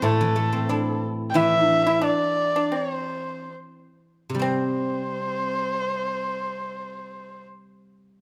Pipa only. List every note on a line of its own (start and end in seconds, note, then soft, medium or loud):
0.04 0.66 A3 medium
0.69 1.01 D4 medium
1.35 1.65 E4 medium
1.65 1.83 D4 medium
1.87 2.01 E4 medium
2.01 2.52 D4 medium
2.56 2.73 D4 medium
2.72 3.48 C4 medium
4.42 7.44 C4 medium